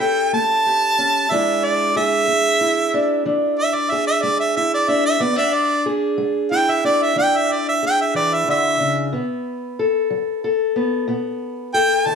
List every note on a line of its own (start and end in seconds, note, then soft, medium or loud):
0.00 0.97 C#4 soft
0.00 0.65 G4 medium
0.00 1.27 A4 medium
0.00 0.32 G5 medium
0.33 0.91 A3 medium
0.33 1.33 A5 loud
0.66 1.27 G4 medium
0.98 1.27 C#4 medium
1.31 1.89 E3 medium
1.31 2.27 G#3 medium
1.31 2.93 D4 medium
1.31 2.60 E4 medium
1.31 1.96 G#4 medium
1.31 1.66 E5 medium
1.64 1.95 D5 medium
1.96 3.91 G#4 medium
1.96 3.23 E5 loud
2.28 2.87 G#3 medium
2.61 4.56 E4 medium
2.94 3.26 D4 medium
3.25 3.84 E3 medium
3.25 4.87 D4 medium
3.59 3.76 E5 medium
3.75 3.93 D5 medium
3.91 5.85 G#4 medium
3.91 4.06 E5 medium
4.07 4.24 E5 medium
4.22 4.82 G#3 medium
4.22 4.38 D5 medium
4.40 4.55 E5 medium
4.57 5.18 E4 medium
4.57 4.72 E5 medium
4.74 4.91 D5 medium
4.88 5.17 D4 medium
4.88 5.04 E5 medium
5.06 5.24 E5 medium
5.20 5.80 E3 medium
5.20 5.36 B3 medium
5.20 5.37 D5 medium
5.36 6.83 D4 soft
5.36 5.55 E5 medium
5.53 5.86 D5 medium
5.86 7.82 G#4 medium
6.18 6.77 G#3 medium
6.51 9.09 E4 medium
6.51 6.72 G5 medium
6.70 6.85 E5 medium
6.84 7.15 D4 medium
6.84 7.04 D5 medium
7.02 7.17 E5 medium
7.16 7.75 E3 medium
7.16 9.09 D4 medium
7.16 7.38 G5 medium
7.37 7.54 E5 medium
7.52 7.66 D5 medium
7.68 7.83 E5 medium
7.83 9.13 G#4 medium
7.83 8.00 G5 medium
8.01 8.15 E5 medium
8.15 8.47 E3 medium
8.15 8.35 D5 medium
8.34 8.48 E5 medium
8.48 8.79 D3 medium
8.48 9.13 E5 medium
8.80 9.13 C#3 medium
9.13 9.72 B2 medium
9.13 10.75 B3 medium
9.79 10.44 A4 medium
10.10 10.69 F#3 medium
10.44 11.73 A4 medium
10.76 11.07 B3 medium
11.08 11.67 B2 medium
11.08 12.15 B3 medium
11.74 12.15 A4 medium
11.74 12.08 G5 loud
12.06 12.15 D#3 medium
12.06 12.15 A5 medium